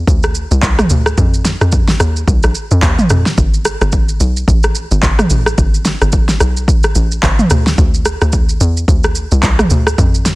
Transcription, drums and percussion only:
0.07 kick loud
0.07 shaker medium
0.23 cross-stick medium
0.23 shaker soft
0.35 shaker medium
0.51 shaker medium
0.63 kick medium
0.63 clap medium
0.63 shaker medium
0.79 cross-stick loud
0.79 mid tom loud
0.79 shaker soft
0.90 shaker medium
1.06 cross-stick loud
1.06 shaker medium
1.18 kick loud
1.18 shaker medium
1.34 shaker medium
1.45 snare medium
1.45 shaker loud
1.61 cross-stick medium
1.61 shaker medium
1.72 kick loud
1.72 shaker medium
1.88 snare medium
1.88 shaker medium
2.00 cross-stick loud
2.00 shaker medium
2.16 shaker medium
2.28 kick loud
2.28 shaker medium
2.43 cross-stick medium
2.43 shaker medium
2.55 shaker medium
2.71 shaker medium
2.83 kick medium
2.83 clap medium
2.83 shaker medium
2.99 mid tom loud
2.99 shaker soft
3.10 cross-stick medium
3.10 shaker loud
3.26 snare medium
3.26 shaker medium
3.38 kick loud
3.38 shaker medium
3.54 shaker medium
3.65 cross-stick loud
3.65 shaker medium
3.81 cross-stick medium
3.81 shaker medium
3.92 kick loud
3.92 shaker medium
4.09 shaker medium
4.20 shaker medium
4.37 shaker medium
4.48 kick loud
4.48 shaker medium
4.63 cross-stick medium
4.63 shaker medium
4.75 shaker medium
4.91 shaker medium
5.03 kick medium
5.03 clap medium
5.03 shaker medium
5.19 cross-stick loud
5.19 mid tom loud
5.19 shaker soft
5.30 shaker loud
5.46 cross-stick loud
5.46 shaker medium
5.58 kick loud
5.58 shaker medium
5.74 shaker medium
5.85 snare medium
5.85 shaker loud
6.02 cross-stick medium
6.02 shaker soft
6.12 kick loud
6.12 shaker medium
6.29 snare medium
6.29 shaker medium
6.40 cross-stick medium
6.40 shaker medium
6.57 shaker medium
6.68 kick loud
6.68 shaker medium
6.83 cross-stick medium
6.83 shaker medium
6.95 shaker medium
7.12 shaker medium
7.23 kick medium
7.23 clap medium
7.23 shaker medium
7.39 mid tom medium
7.39 shaker soft
7.50 cross-stick medium
7.50 shaker loud
7.67 snare medium
7.67 shaker medium
7.78 kick loud
7.78 shaker medium
7.94 shaker medium
8.05 cross-stick medium
8.05 shaker medium
8.21 cross-stick medium
8.21 shaker soft
8.32 kick loud
8.32 shaker medium
8.49 shaker medium
8.61 shaker loud
8.77 shaker medium
8.88 kick loud
8.88 shaker medium
9.03 cross-stick medium
9.03 shaker medium
9.15 shaker medium
9.31 shaker medium
9.43 kick medium
9.43 clap medium
9.43 shaker medium
9.59 cross-stick loud
9.59 mid tom medium
9.59 shaker soft
9.70 shaker medium
9.87 cross-stick loud
9.87 shaker medium
9.98 kick loud
9.98 shaker medium
10.14 shaker medium
10.25 snare medium
10.25 shaker medium

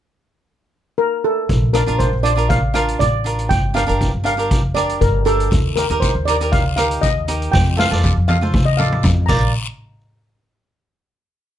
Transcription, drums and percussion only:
1.49 kick medium
1.49 closed hi-hat medium
1.75 cross-stick medium
1.75 closed hi-hat medium
1.88 closed hi-hat soft
2.00 kick medium
2.00 closed hi-hat medium
2.25 closed hi-hat medium
2.38 closed hi-hat medium
2.50 kick loud
2.50 closed hi-hat medium
2.75 cross-stick medium
2.75 closed hi-hat medium
2.88 closed hi-hat medium
3.00 kick medium
3.00 closed hi-hat medium
3.26 closed hi-hat medium
3.39 closed hi-hat medium
3.50 kick medium
3.50 closed hi-hat medium
3.76 cross-stick medium
3.76 closed hi-hat medium
3.89 closed hi-hat soft
4.01 kick medium
4.01 closed hi-hat soft
4.26 closed hi-hat medium
4.39 closed hi-hat medium
4.51 kick loud
4.51 closed hi-hat medium
4.76 cross-stick medium
4.76 closed hi-hat medium
4.89 closed hi-hat medium
5.01 kick medium
5.01 closed hi-hat medium
5.27 closed hi-hat medium
5.40 closed hi-hat medium
5.51 kick medium
5.51 closed hi-hat medium
5.51 long guiro medium
5.77 cross-stick medium
5.77 closed hi-hat medium
5.90 closed hi-hat medium
6.02 kick medium
6.02 closed hi-hat medium
6.02 short guiro medium
6.27 closed hi-hat medium
6.27 short guiro medium
6.41 closed hi-hat medium
6.52 kick loud
6.52 closed hi-hat medium
6.52 long guiro medium
6.77 cross-stick medium
6.77 closed hi-hat medium
6.77 short guiro medium
6.91 closed hi-hat medium
7.03 kick medium
7.03 closed hi-hat medium
7.03 short guiro medium
7.28 closed hi-hat medium
7.42 closed hi-hat medium
7.53 kick loud
7.53 snare soft
7.53 long guiro medium
7.79 snare medium
7.92 snare soft
8.04 kick medium
8.04 high tom medium
8.04 short guiro medium
8.28 high tom medium
8.28 short guiro medium
8.42 mid tom medium
8.54 kick loud
8.54 mid tom medium
8.54 long guiro medium
8.79 mid tom medium
8.79 short guiro medium
8.92 mid tom medium
9.03 kick medium
9.03 mid tom medium
9.03 short guiro medium
9.28 kick medium
9.28 crash medium
9.28 long guiro medium

